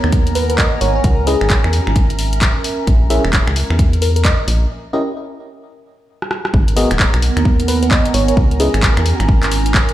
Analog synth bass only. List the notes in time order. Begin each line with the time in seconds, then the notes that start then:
0.04 D#2
0.81 G#1
1.04 C#2
1.41 G#1
1.64 E2
1.87 G#1
2.87 A#1
3.25 E1
3.47 C#2
3.70 E2
4.48 A#1
6.54 G#1
6.91 D#1
7.14 B1
7.37 D#2
8.14 G#1
8.37 C#2
8.74 G#1
8.97 E2
9.20 G#1